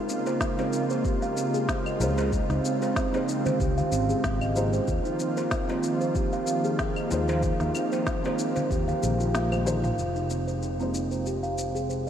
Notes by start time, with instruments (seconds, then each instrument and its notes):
Already playing: analog synth pad C#3 G#3 A#3 F4
0.09 steel tongue drum C4, shaker
0.26 steel tongue drum C5, darbuka tek, shaker
0.41 kick, snare, shaker
0.56 felt piano F3 G#3 A#3 D#4 C5, steel tongue drum C4, darbuka tek, shaker
0.73 steel tongue drum D#4, shaker
0.90 steel tongue drum C5, shaker
1.05 steel tongue drum G4, kick, shaker
1.22 steel tongue drum F5, darbuka ka, shaker
1.37 steel tongue drum C4, shaker
1.54 steel tongue drum G#4, shaker
1.69 steel tongue drum C5, kick, snare, shaker
1.86 steel tongue drum D#5, claves, shaker
1.99 fretless electric bass C#2, felt piano F3 G#3 A#3 D#4 C5, steel tongue drum D#4, darbuka ka, shaker
2.18 steel tongue drum C5, darbuka ka, darbuka tek, shaker
2.32 analog synth pad C4, steel tongue drum F4, kick, shaker
2.49 fretless electric bass C#2, steel tongue drum D#4, snare, darbuka ka, shaker
2.65 steel tongue drum C4, shaker
2.82 steel tongue drum C5, darbuka ka, darbuka tek, shaker
2.96 steel tongue drum C5, kick, snare, shaker
3.11 felt piano F3 G#3 A#3 D#4, steel tongue drum C4, darbuka tek, shaker
3.16 felt piano C5
3.29 steel tongue drum D#4, shaker
3.46 steel tongue drum C5, darbuka ka, darbuka tek, darbuka dum, shaker
3.60 fretless electric bass C#2, steel tongue drum G4, kick, shaker
3.78 steel tongue drum F5, darbuka dum, shaker
3.92 fretless electric bass G#1, steel tongue drum C4, darbuka ka, shaker
4.09 steel tongue drum G#4, shaker
4.24 fretless electric bass G#1, kick, snare, shaker
4.41 steel tongue drum D#5, claves, shaker
4.55 felt piano F3 A#3 D#4 G#4 C5, steel tongue drum D#4, shaker
4.73 steel tongue drum C5, shaker
4.88 fretless electric bass D#2, analog synth pad D#3 F3 A#3 F4, steel tongue drum F4, kick, shaker
5.05 steel tongue drum D#4, shaker
5.20 steel tongue drum C4, shaker
5.37 steel tongue drum C5, darbuka tek, shaker
5.51 steel tongue drum C5, kick, snare, shaker
5.67 felt piano F3 G#3 A#3 D#4 C5, steel tongue drum C4, darbuka tek, shaker
5.83 steel tongue drum D#4, shaker
6.01 steel tongue drum C5, shaker
6.15 steel tongue drum G4, kick, shaker
6.32 steel tongue drum F5, darbuka ka, shaker
6.47 steel tongue drum C4, shaker
6.64 steel tongue drum G#4, shaker
6.79 steel tongue drum C5, kick, snare, shaker
6.96 steel tongue drum D#5, claves, shaker
7.09 fretless electric bass D#2, felt piano F3 G#3 A#3 D#4 C5, steel tongue drum D#4, darbuka ka, shaker
7.28 steel tongue drum C5, darbuka ka, darbuka tek, shaker
7.43 steel tongue drum F4, kick, shaker
7.60 fretless electric bass D#2, steel tongue drum D#4, snare, darbuka ka, shaker
7.75 steel tongue drum C4, claves, shaker
7.92 steel tongue drum C5, darbuka ka, darbuka tek, shaker
8.07 steel tongue drum C5, kick, snare, shaker
8.23 felt piano F3 G#3 A#3 D#4 C5, steel tongue drum C4, darbuka tek, shaker
8.39 steel tongue drum D#4, shaker
8.56 steel tongue drum C5, darbuka ka, darbuka tek, darbuka dum, shaker
8.70 fretless electric bass D#2, steel tongue drum G4, kick, shaker
8.88 steel tongue drum F5, darbuka dum, shaker
9.03 fretless electric bass A#1, steel tongue drum G#4, darbuka ka, shaker
9.20 steel tongue drum F4, shaker
9.34 steel tongue drum F5, snare, high tom, shaker
9.52 steel tongue drum C5, high tom, claves, shaker
9.65 felt piano F3 A#3 D#4 G#4 C5, steel tongue drum F4, mid tom, shaker
9.84 steel tongue drum F5, mid tom, shaker
9.98 fretless electric bass F1, analog synth pad C3 G#3 F4, steel tongue drum F4, shaker
10.16 steel tongue drum D#4, shaker
10.30 steel tongue drum C4, shaker
10.47 steel tongue drum C5, shaker
10.63 steel tongue drum C5, shaker
10.78 felt piano F3 G#3 A#3 D#4, steel tongue drum C4, shaker
10.82 felt piano C5
10.94 steel tongue drum D#4, shaker
11.11 steel tongue drum C5, shaker
11.26 steel tongue drum G4, shaker
11.43 steel tongue drum F5, shaker
11.58 steel tongue drum C4, shaker
11.75 steel tongue drum G#4, shaker
11.89 steel tongue drum C5, shaker